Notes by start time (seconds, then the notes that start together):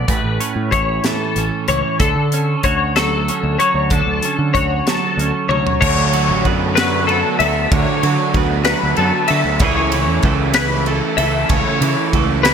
Already playing: A3
0.08 A1 A2 B4, kick, closed hi-hat
0.24 A1
0.40 C#4, closed hi-hat
0.56 A2
0.72 A1 E4 C#5, kick, closed hi-hat
1.04 E3 A4, snare, closed hi-hat
1.36 A1 C#4, closed hi-hat
1.68 C#2 E3 C#5, closed hi-hat
2.00 D2 D3 A4, kick, closed hi-hat
2.15 D3
2.32 C#4, closed hi-hat
2.63 D2 F#4 C#5, kick, closed hi-hat
2.96 F#3 A4, snare, closed hi-hat
3.28 C#4, closed hi-hat
3.43 D2
3.59 F#3 C#5, closed hi-hat
3.74 D2
3.90 D3 A4, kick, closed hi-hat
4.07 D2
4.22 C#4, closed hi-hat
4.39 D3
4.54 D2 F#4 C#5, kick, closed hi-hat
4.86 F#3 A4, snare, closed hi-hat
5.17 D2 C#4, closed hi-hat
5.49 D2 F#3 C#5, high tom
5.67 floor tom
5.81 D2 D3 F#3 A3 D4 F#4 C#5, kick, crash
6.13 F#3 A3 D4 F#4, ride
6.29 A1
6.45 F#2 F#3 A3 B3 D4 F#4, kick, ride
6.75 F#3 A3 D4 F#4 B4, snare, ride
7.07 F#3 A3 B3 D4 A4, ride
7.11 F#4
7.39 D2 F#3 A3 D4 F#4 A4 E5, ride
7.71 D2 D3 F#3 A3 D4 C#5, kick, ride
7.75 F#4
8.03 D3 F#3 A3 D4 F#4, ride
8.34 D2 F#3 A3 B3 D4 F#4, kick, ride
8.65 F#3 A3 D4 F#4 B4, snare, ride
8.83 D2
8.96 F#2 F#3 A3 B3 D4 F#4 A4, ride
9.28 D3 F#3 A3 D4 F#4 A4 E5, ride
9.45 D2
9.60 C#2 C#3 E3 A3 C#4 E4 C#5, kick, ride
9.64 G#4
9.92 C#3 E3 A3 E4, ride
10.08 E2
10.23 C#2 C#3 E3 A3, kick, ride
10.27 E4
10.54 C#3 E3 A3 E4 B4, snare, ride
10.86 C#3 E3 A3 E4 A4, ride
11.17 C#2 E3 A3 E4 A4 E5, ride
11.21 C#3
11.49 C#2 C#3 E3 A3 E4 C#5, kick, ride
11.81 C#3 E3 A3 E4, ride
12.13 C#2 C#3 E3 A3 E4, kick, ride
12.43 C#3 E3 A3 E4 B4, snare, ride